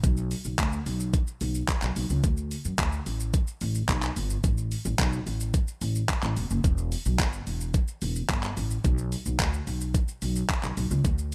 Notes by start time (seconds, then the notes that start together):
0.04 B1, kick, closed hi-hat, shaker
0.17 shaker
0.31 open hi-hat, shaker
0.45 B1, shaker
0.58 D2, kick, clap, closed hi-hat, shaker
0.72 shaker
0.86 B1, open hi-hat, shaker
1.00 shaker
1.14 kick, closed hi-hat, shaker
1.27 shaker
1.41 B1, open hi-hat, shaker
1.55 shaker
1.68 kick, clap, closed hi-hat, shaker
1.82 B1, clap, shaker
1.96 B1, open hi-hat, shaker
2.10 C#2, shaker
2.24 D2, kick, closed hi-hat, shaker
2.37 shaker
2.51 open hi-hat, shaker
2.65 F#2, shaker
2.78 D2, kick, clap, closed hi-hat, shaker
2.93 shaker
3.06 A1, open hi-hat, shaker
3.20 shaker
3.34 kick, closed hi-hat, shaker
3.47 shaker
3.61 A1, open hi-hat, shaker
3.75 shaker
3.89 B1, kick, clap, closed hi-hat, shaker
4.03 clap, shaker
4.16 G1, open hi-hat, shaker
4.30 shaker
4.44 A1, kick, closed hi-hat, shaker
4.58 shaker
4.72 open hi-hat, shaker
4.85 A1, shaker
4.99 B1, kick, clap, closed hi-hat, shaker
5.13 shaker
5.26 A1, open hi-hat, shaker
5.40 shaker
5.54 kick, closed hi-hat, shaker
5.68 shaker
5.81 A1, open hi-hat, shaker
5.95 shaker
6.09 kick, clap, closed hi-hat, shaker
6.23 A1, clap, shaker
6.37 E1, open hi-hat, shaker
6.50 F#1, shaker
6.64 E1, kick, closed hi-hat, shaker
6.78 shaker
6.92 open hi-hat, shaker
7.05 B1, shaker
7.19 kick, clap, closed hi-hat, shaker
7.33 shaker
7.47 E1, open hi-hat, shaker
7.61 shaker
7.74 kick, closed hi-hat, shaker
7.88 shaker
8.02 E1, open hi-hat, shaker
8.16 shaker
8.29 G1, kick, clap, closed hi-hat, shaker
8.43 clap, shaker
8.57 A1, open hi-hat, shaker
8.71 shaker
8.84 B1, kick, closed hi-hat, shaker
8.98 shaker
9.12 open hi-hat, shaker
9.26 B1, shaker
9.39 D2, kick, clap, closed hi-hat, shaker
9.53 shaker
9.67 B1, open hi-hat, shaker
9.81 shaker
9.94 kick, closed hi-hat, shaker
10.08 shaker
10.22 B1, open hi-hat, shaker
10.36 shaker
10.49 kick, clap, closed hi-hat, shaker
10.63 B1, clap, shaker
10.77 B1, open hi-hat, shaker
10.91 C#2, shaker
11.05 D2, kick, closed hi-hat, shaker
11.18 shaker